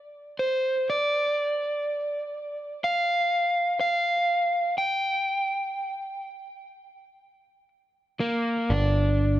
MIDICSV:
0, 0, Header, 1, 3, 480
1, 0, Start_track
1, 0, Key_signature, -2, "minor"
1, 0, Tempo, 979912
1, 425, Time_signature, 4, 2, 24, 8
1, 4604, End_track
2, 0, Start_track
2, 0, Title_t, "Overdriven electric guitar"
2, 0, Program_c, 0, 29
2, 0, Note_on_c, 0, 74, 58
2, 193, Note_on_c, 0, 72, 49
2, 225, Note_off_c, 0, 74, 0
2, 436, Note_off_c, 0, 72, 0
2, 439, Note_on_c, 0, 74, 59
2, 1372, Note_off_c, 0, 74, 0
2, 1391, Note_on_c, 0, 77, 68
2, 1858, Note_off_c, 0, 77, 0
2, 1864, Note_on_c, 0, 77, 58
2, 2339, Note_off_c, 0, 77, 0
2, 2341, Note_on_c, 0, 79, 62
2, 3763, Note_off_c, 0, 79, 0
2, 4018, Note_on_c, 0, 58, 52
2, 4262, Note_on_c, 0, 62, 54
2, 4268, Note_off_c, 0, 58, 0
2, 4604, Note_off_c, 0, 62, 0
2, 4604, End_track
3, 0, Start_track
3, 0, Title_t, "Picked electric bass"
3, 0, Program_c, 1, 34
3, 4262, Note_on_c, 1, 31, 52
3, 4604, Note_off_c, 1, 31, 0
3, 4604, End_track
0, 0, End_of_file